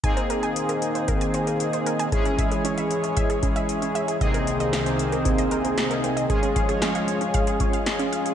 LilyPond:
<<
  \new Staff \with { instrumentName = "Synth arpeggio sound" } { \time 4/4 \key aes \major \tempo 4 = 115 aes''16 c''16 bes'16 aes''16 r16 bes'16 r16 c''16 bes'16 aes''16 c''16 bes'16 r16 c''16 bes'16 aes''16 | aes'16 des'16 fes''16 aes'16 des'16 fes''16 r16 des'16 fes''16 aes'16 des'16 fes''16 r16 des'16 fes''16 aes'16 | ees''16 bes'16 c'16 ees''16 r16 c'16 r16 bes'16 c'16 ees''16 bes'16 c'16 r16 bes'16 c'16 ees''16 | aes'16 des'16 f''16 aes'16 des'16 f''16 r16 des'16 f''16 aes'16 des'16 f''16 r16 des'16 f''16 aes'16 | }
  \new Staff \with { instrumentName = "Analog polysynth" } { \time 4/4 \key aes \major <bes c' ees' aes'>1 | <aes des' fes' aes'>1 | <c bes c' ees' aes'>1 | <aes des' f' aes'>1 | }
  \new Staff \with { instrumentName = "Analog synth pad" } { \time 4/4 \key aes \major << { <ees bes c' c''>1 | <fes aes des' des''>1 | <c, ees bes c' c''>1 | <f aes des' des''>1 | } \\ { aes'1~ | aes'1~ | aes'1~ | aes'1 | } >> }
  \new DrumStaff \with { instrumentName = "Drums" } \drummode { \time 4/4 <hh bd>16 hh16 hh16 hh16 hh16 hh16 hh16 hh16 <hh bd>16 hh16 hh16 hh16 hh16 hh16 hh16 hh16 | <hh bd>16 hh16 <hh bd>16 hh16 hh16 hh16 hh16 hh16 <hh bd>16 hh16 <hh bd>16 hh16 hh16 hh16 hh16 hh16 | <hh bd>16 hh16 hh16 hh16 <hh sn>16 hh16 hh16 hh16 <hh bd>16 hh16 hh16 hh16 <hh sn>16 hh16 hh16 hh16 | <hh bd>16 hh16 <hh bd>16 hh16 <hh sn>16 hh16 hh16 hh16 <hh bd>16 hh16 <hh bd>16 hh16 <hh sn>16 hh16 hh16 hh16 | }
>>